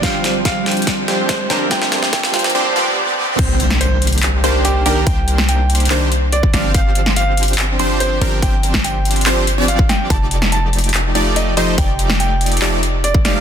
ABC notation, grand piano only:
X:1
M:4/4
L:1/16
Q:1/4=143
K:Cm
V:1 name="Grand piano"
f3 z f2 z6 c2 c2 | g3 z g2 z8 z2 | c3 z c2 z6 G2 G2 | g3 z g2 z6 d2 d2 |
f3 z f2 z6 c2 c2 | g3 z g2 z6 f2 g2 | =a3 z a2 z6 e2 e2 | g3 z g2 z6 d2 d2 |]